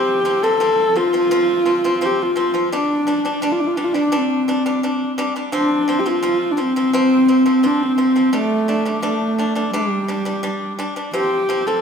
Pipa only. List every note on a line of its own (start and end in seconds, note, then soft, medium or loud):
0.00 0.18 F3 medium
0.00 0.18 C4 medium
0.25 0.39 F3 medium
0.25 0.40 C4 medium
0.43 0.57 F3 medium
0.43 0.58 C4 medium
0.60 0.89 F3 medium
0.60 0.89 C4 medium
0.96 1.10 F3 medium
0.96 1.10 C4 medium
1.13 1.28 F3 medium
1.13 1.28 C4 medium
1.31 1.60 F3 medium
1.31 1.60 C4 medium
1.66 1.80 F3 medium
1.66 1.80 C4 medium
1.84 1.98 F3 medium
1.84 1.99 C4 medium
2.01 2.30 F3 medium
2.01 2.30 C4 medium
2.36 2.51 F3 medium
2.36 2.51 C4 medium
2.54 2.68 F3 medium
2.54 2.69 C4 medium
2.72 3.01 G3 medium
2.72 3.01 D4 medium
3.07 3.21 G3 medium
3.07 3.22 D4 medium
3.25 3.39 G3 medium
3.25 3.39 D4 medium
3.42 3.70 G3 medium
3.42 3.71 D4 medium
3.77 3.92 G3 medium
3.77 3.92 D4 medium
3.94 4.09 G3 medium
3.94 4.09 D4 medium
4.12 4.41 G3 medium
4.12 4.41 D4 medium
4.48 4.62 G3 medium
4.48 4.62 D4 medium
4.66 4.80 G3 medium
4.66 4.80 D4 medium
4.83 5.11 G3 medium
4.83 5.12 D4 medium
5.18 5.32 G3 medium
5.18 5.33 D4 medium
5.36 5.50 G3 medium
5.36 5.50 D4 medium
5.52 5.81 F3 medium
5.52 5.81 C4 medium
5.88 6.02 F3 medium
5.88 6.03 C4 medium
6.06 6.20 F3 medium
6.06 6.20 C4 medium
6.23 6.51 F3 medium
6.23 6.51 C4 medium
6.57 6.72 F3 medium
6.57 6.72 C4 medium
6.76 6.90 F3 medium
6.76 6.90 C4 medium
6.93 7.22 F3 medium
6.93 7.22 C4 loud
7.28 7.43 F3 medium
7.28 7.43 C4 medium
7.46 7.60 F3 medium
7.46 7.60 C4 medium
7.63 7.91 F3 medium
7.63 7.92 C4 medium
7.98 8.12 F3 medium
7.98 8.12 C4 medium
8.16 8.30 F3 medium
8.16 8.30 C4 medium
8.33 8.61 G3 medium
8.33 8.61 D4 medium
8.68 8.82 G3 medium
8.68 8.83 D4 medium
8.85 9.00 G3 medium
8.85 9.00 D4 medium
9.03 9.31 G3 medium
9.03 9.31 D4 medium
9.38 9.53 G3 medium
9.38 9.53 D4 medium
9.55 9.70 G3 medium
9.55 9.70 D4 medium
9.73 10.02 G3 medium
9.73 10.02 D4 medium
10.08 10.23 G3 medium
10.08 10.23 D4 medium
10.25 10.40 G3 medium
10.25 10.40 D4 medium
10.43 10.72 G3 medium
10.43 10.72 D4 medium
10.79 10.93 G3 medium
10.79 10.93 D4 medium
10.96 11.10 G3 medium
10.96 11.11 D4 medium
11.13 11.42 F3 medium
11.13 11.42 C4 medium
11.49 11.63 F3 medium
11.49 11.63 C4 medium
11.67 11.81 F3 medium
11.67 11.81 C4 medium